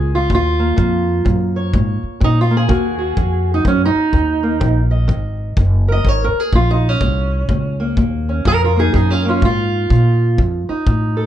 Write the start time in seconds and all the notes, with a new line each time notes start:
Already playing: C#2 A#2 F4 G#4
0.15 F4
0.30 D#2 A#2, kick
0.35 F4
0.59 A#3
0.76 F2 A#2 A#3, kick
1.25 F#2 A#2, kick
1.56 C#5
1.74 G#2 A#2, kick
2.03 muted upright bass stroke
2.20 A#2 D#4, kick
2.41 F4
2.51 A#3
2.57 G#4
2.68 D#2 D#3 A#3 F#4, kick
2.98 F#4
3.17 F2 D#3, kick
3.54 D#4
3.65 F#2 D#3 C#4, kick
3.85 D#4
3.95 muted upright bass stroke
4.13 D#2 D#3, kick
4.43 A#3
4.60 A#1 D#3, kick
4.91 D#5
5.08 G#1 D#3, kick
5.57 F#1 D#3, kick
5.88 A#4 D#5
6.05 G#1 D#3 C#5, kick
6.24 A#4
6.33 muted upright bass stroke
6.40 G#4
6.52 A#1 A#2 F4, kick
6.71 D#4
6.89 C#4
7.01 C2 A#2, kick
7.49 C#2 A#2, kick
7.80 A#3
7.97 D#2 A#2, kick
8.29 C#4
8.45 F2 A#2 F4 A#4, kick
8.64 F4 A#4
8.76 A#3 D#4 G#4
8.94 F#2 A#2 D#4 G#4, kick
9.10 C#4 F4
9.25 A#3 C#4
9.30 F4
9.42 G#2 A#2 F4, kick
9.90 A#2, kick
10.38 F2, kick
10.69 D#4, muted upright bass stroke
10.86 F2 A2, kick
11.17 A4